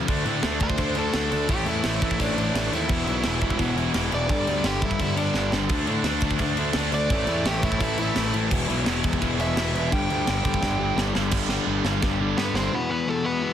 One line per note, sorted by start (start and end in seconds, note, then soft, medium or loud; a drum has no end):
0.08 0.23 D2 loud
0.08 0.24 D3 medium
0.08 0.26 A3 medium
0.08 0.25 D4 loud
0.08 kick loud
0.08 crash medium
0.25 0.40 A2 medium
0.25 0.41 D3 medium
0.25 0.43 A3 medium
0.25 0.43 D4 medium
0.25 crash medium
0.43 0.58 D2 medium
0.43 0.59 D3 medium
0.43 0.60 A3 medium
0.43 0.59 D4 medium
0.43 snare loud
0.43 crash medium
0.60 0.75 D2 medium
0.60 0.76 D3 medium
0.60 0.77 A3 medium
0.60 0.77 D4 medium
0.60 0.96 C5 medium
0.60 kick medium
0.60 crash medium
0.70 kick medium
0.77 1.07 D2 medium
0.77 0.94 D3 loud
0.77 0.95 A3 medium
0.77 0.95 D4 loud
0.77 kick medium
0.77 crash medium
0.95 1.12 D3 medium
0.95 1.13 A3 medium
0.95 1.13 D4 medium
0.95 1.49 A4 medium
0.95 crash medium
1.14 1.28 D2 medium
1.14 1.30 D3 medium
1.14 1.31 A3 medium
1.14 1.31 D4 medium
1.14 snare loud
1.14 crash medium
1.31 1.46 D2 medium
1.31 1.48 D3 medium
1.31 1.48 A3 medium
1.31 1.48 D4 medium
1.31 crash medium
1.49 1.63 A1 loud
1.49 1.64 A2 medium
1.49 1.66 E3 loud
1.49 1.65 A3 medium
1.49 1.67 G4 medium
1.49 kick loud
1.49 crash medium
1.66 1.81 E2 medium
1.66 1.83 A2 medium
1.66 1.84 E3 medium
1.66 1.84 A3 medium
1.66 2.18 E4 medium
1.66 crash medium
1.84 1.98 A1 medium
1.84 2.00 A2 medium
1.84 2.02 E3 medium
1.84 2.01 A3 medium
1.84 snare loud
1.84 crash medium
2.01 2.16 A1 medium
2.01 2.17 A2 medium
2.01 2.17 E3 medium
2.01 2.18 A3 medium
2.01 kick medium
2.01 crash medium
2.11 kick medium
2.18 2.48 A1 medium
2.18 2.35 A2 loud
2.18 2.35 E3 loud
2.18 2.36 A3 loud
2.18 2.71 D4 medium
2.18 kick medium
2.18 crash medium
2.36 2.52 A2 medium
2.36 2.52 E3 medium
2.36 2.53 A3 medium
2.36 crash medium
2.53 2.69 A1 medium
2.53 2.70 A2 medium
2.53 2.71 E3 medium
2.53 2.71 A3 medium
2.53 snare loud
2.53 crash medium
2.71 2.86 D#2 medium
2.71 2.88 A2 medium
2.71 2.88 E3 loud
2.71 2.89 A3 loud
2.71 3.76 E4 medium
2.71 crash medium
2.88 3.04 E1 loud
2.88 3.05 E2 loud
2.88 3.06 B2 loud
2.88 3.06 E3 loud
2.88 kick loud
2.88 crash medium
3.06 3.21 B1 medium
3.06 3.23 E2 medium
3.06 3.24 B2 medium
3.06 3.24 E3 medium
3.06 crash medium
3.24 3.39 E1 medium
3.24 3.41 E2 medium
3.24 3.41 B2 medium
3.24 3.41 E3 medium
3.24 snare loud
3.24 crash medium
3.41 3.56 E1 medium
3.41 3.58 E2 medium
3.41 3.58 B2 medium
3.41 3.58 E3 medium
3.41 kick medium
3.41 crash medium
3.50 kick medium
3.59 3.88 E1 medium
3.59 3.75 E2 loud
3.59 3.75 B2 loud
3.59 3.75 E3 loud
3.59 kick medium
3.59 crash medium
3.76 3.93 E2 medium
3.76 3.94 B2 medium
3.76 3.94 E3 loud
3.76 crash medium
3.94 4.09 E1 medium
3.94 4.10 E2 medium
3.94 4.11 B2 medium
3.94 4.11 E3 loud
3.94 snare loud
3.94 crash medium
4.11 4.29 E1 medium
4.11 4.28 E2 medium
4.11 4.28 B2 medium
4.11 4.29 E3 loud
4.11 4.64 D5 loud
4.11 crash medium
4.28 4.44 G1 loud
4.28 4.46 G2 medium
4.28 4.47 D3 loud
4.28 4.48 G3 loud
4.28 kick loud
4.28 crash medium
4.47 4.62 D2 medium
4.47 4.64 G2 medium
4.47 4.64 D3 medium
4.47 4.65 G3 medium
4.47 crash medium
4.64 4.79 G1 loud
4.64 4.81 G2 medium
4.64 4.82 D3 medium
4.64 4.82 G3 loud
4.64 4.83 G4 medium
4.64 snare loud
4.64 crash medium
4.82 4.97 G1 medium
4.82 4.99 G2 medium
4.82 4.99 D3 medium
4.82 5.00 G3 medium
4.82 5.00 E4 medium
4.82 kick loud
4.82 crash medium
4.91 kick medium
5.00 5.29 G1 medium
5.00 5.16 G2 medium
5.00 5.17 D3 medium
5.00 5.17 G3 loud
5.00 5.18 E4 medium
5.00 kick medium
5.00 crash medium
5.15 5.34 G2 medium
5.15 5.35 D3 medium
5.15 5.35 G3 medium
5.15 5.51 D4 loud
5.15 crash medium
5.34 5.49 G1 medium
5.34 5.52 G2 medium
5.34 5.53 D3 medium
5.34 5.53 G3 medium
5.34 snare medium
5.52 5.67 G1 medium
5.52 5.69 G2 medium
5.52 5.69 D3 medium
5.52 5.70 G3 medium
5.52 snare medium
5.69 5.84 D2 loud
5.69 5.86 D3 loud
5.69 5.87 A3 medium
5.69 5.87 D4 loud
5.69 kick loud
5.69 crash medium
5.87 6.02 A2 medium
5.87 6.04 D3 medium
5.87 6.04 A3 medium
5.87 6.04 D4 medium
5.87 crash medium
6.03 6.19 D2 loud
6.03 6.22 D3 medium
6.03 6.23 A3 medium
6.03 6.23 D4 medium
6.03 snare loud
6.03 crash medium
6.20 6.37 D2 medium
6.20 6.40 D3 medium
6.20 6.40 A3 medium
6.20 6.40 D4 medium
6.20 kick loud
6.20 crash medium
6.31 kick medium
6.39 6.69 D2 medium
6.39 6.57 D3 loud
6.39 6.58 A3 loud
6.39 6.58 D4 loud
6.39 kick medium
6.39 crash medium
6.57 6.75 D3 medium
6.57 6.75 A3 medium
6.57 6.76 D4 loud
6.57 crash medium
6.73 6.89 D2 medium
6.73 6.92 D3 medium
6.73 6.93 A3 medium
6.73 6.93 D4 loud
6.73 snare loud
6.73 crash medium
6.92 7.07 D2 medium
6.92 7.10 D3 medium
6.92 7.10 A3 loud
6.92 7.10 D4 medium
6.92 7.45 D5 loud
6.92 crash medium
7.10 7.25 A1 loud
7.10 7.26 A2 medium
7.10 7.28 E3 loud
7.10 7.27 A3 loud
7.10 kick loud
7.10 crash medium
7.27 7.42 E2 medium
7.27 7.44 A2 medium
7.27 7.45 E3 medium
7.27 7.45 A3 medium
7.27 crash medium
7.45 7.60 A1 loud
7.45 7.61 A2 medium
7.45 7.62 E3 medium
7.45 7.62 A3 medium
7.45 7.63 G4 medium
7.45 snare loud
7.45 crash medium
7.62 7.78 A1 loud
7.62 7.79 A2 medium
7.62 7.79 E3 medium
7.62 7.80 A3 loud
7.62 7.80 E4 loud
7.62 kick medium
7.62 crash medium
7.72 kick medium
7.80 8.09 A1 medium
7.80 7.97 A2 loud
7.80 7.98 E3 loud
7.80 7.98 A3 loud
7.80 7.98 E4 medium
7.80 kick medium
7.80 crash medium
7.98 8.14 A2 medium
7.98 8.14 E3 loud
7.98 8.14 A3 loud
7.98 8.33 E4 loud
7.98 crash medium
8.15 8.31 A1 medium
8.15 8.32 A2 medium
8.15 8.32 E3 medium
8.15 8.33 A3 medium
8.15 snare loud
8.15 crash medium
8.33 8.48 A1 medium
8.33 8.50 A2 medium
8.33 8.50 E3 loud
8.33 8.51 A3 loud
8.33 crash medium
8.51 8.66 E1 loud
8.51 8.67 E2 medium
8.51 8.68 B2 loud
8.51 8.68 E3 loud
8.51 kick loud
8.51 crash medium
8.69 8.84 B1 medium
8.69 8.85 E2 medium
8.69 8.85 B2 medium
8.69 8.86 E3 loud
8.69 crash medium
8.86 9.01 E1 medium
8.86 9.02 E2 medium
8.86 9.03 B2 medium
8.86 9.03 E3 loud
8.86 snare loud
8.86 crash medium
9.03 9.19 E1 loud
9.03 9.20 E2 medium
9.03 9.20 B2 medium
9.03 9.21 E3 loud
9.03 kick loud
9.03 crash medium
9.13 kick medium
9.21 9.51 E1 medium
9.21 9.38 E2 loud
9.21 9.39 B2 loud
9.21 9.39 E3 loud
9.21 kick medium
9.21 crash medium
9.39 9.56 E2 medium
9.39 9.57 B2 medium
9.39 9.56 E3 loud
9.39 9.91 E5 loud
9.39 crash medium
9.55 9.70 E1 medium
9.55 9.73 E2 medium
9.55 9.74 B2 medium
9.55 9.74 E3 loud
9.55 snare loud
9.55 crash medium
9.73 9.88 E1 medium
9.73 9.91 E2 medium
9.73 9.91 B2 medium
9.73 9.92 E3 loud
9.73 crash medium
9.92 10.07 G1 loud
9.92 10.09 G2 loud
9.92 10.09 D3 loud
9.92 10.10 G3 loud
9.92 10.27 G5 loud
9.92 kick loud
9.92 crash medium
10.10 10.24 D2 medium
10.10 10.25 G2 medium
10.10 10.27 D3 medium
10.10 10.26 G3 medium
10.10 crash medium
10.26 10.42 G1 medium
10.26 10.43 G2 medium
10.26 10.43 D3 medium
10.26 10.44 G3 loud
10.26 snare loud
10.26 crash medium
10.30 10.97 G5 loud
10.44 10.59 G1 loud
10.44 10.60 G2 medium
10.44 10.61 D3 medium
10.44 10.60 G3 medium
10.44 kick medium
10.44 crash medium
10.54 kick medium
10.61 10.91 G1 loud
10.61 10.77 G2 loud
10.61 10.78 D3 loud
10.61 10.78 G3 loud
10.61 kick medium
10.61 snare medium
10.79 10.94 G2 medium
10.79 10.95 D3 medium
10.79 10.95 G3 loud
10.96 11.12 G1 medium
10.96 11.12 G2 medium
10.96 11.12 D3 loud
10.96 11.13 G3 loud
10.96 snare loud
11.13 11.30 G1 medium
11.13 11.31 G2 loud
11.13 11.31 D3 medium
11.13 11.31 G3 loud
11.13 snare medium
11.31 11.57 G1 loud
11.31 11.48 G2 loud
11.31 11.48 D3 medium
11.31 11.49 G3 loud
11.31 kick loud
11.31 snare medium
11.31 crash loud
11.49 11.65 G2 medium
11.49 11.66 D3 medium
11.49 11.66 G3 medium
11.49 snare medium
11.66 11.80 G1 loud
11.66 11.84 G2 loud
11.66 11.85 D3 loud
11.66 11.84 G3 loud
11.84 11.97 G1 medium
11.84 12.01 G2 medium
11.84 12.02 D3 medium
11.84 12.02 G3 medium
11.84 snare medium
12.02 12.15 G1 medium
12.02 12.19 G2 loud
12.02 12.19 D3 loud
12.02 12.20 G3 loud
12.02 kick loud
12.02 snare medium
12.19 12.32 G1 medium
12.19 12.36 G2 medium
12.19 12.37 D3 loud
12.19 12.37 G3 medium
12.37 12.50 G2 medium
12.37 12.54 G2 loud
12.37 12.55 D3 loud
12.37 12.55 G3 loud
12.37 12.54 B3 medium
12.37 12.56 B4 medium
12.37 snare loud
12.54 12.67 G1 medium
12.54 12.72 G2 medium
12.54 12.72 D3 medium
12.54 12.73 G3 loud
12.54 12.72 C4 medium
12.54 12.75 C5 medium
12.54 snare medium
12.73 12.89 E2 loud
12.73 12.89 B2 loud
12.73 12.90 E3 loud
12.73 12.90 B3 medium
12.73 12.90 B4 medium
12.89 13.07 E2 medium
12.89 13.06 B2 medium
12.89 13.08 E3 loud
12.89 13.07 B3 medium
12.89 13.09 B4 medium
13.08 13.24 E2 medium
13.08 13.24 B2 medium
13.08 13.25 E3 medium
13.08 13.25 A3 medium
13.08 13.25 A4 medium
13.24 13.41 E2 medium
13.24 13.42 B2 medium
13.24 13.43 E3 loud
13.24 13.53 B3 medium
13.24 13.53 B4 medium
13.43 13.53 E2 loud
13.43 13.53 B2 loud
13.43 13.53 E3 loud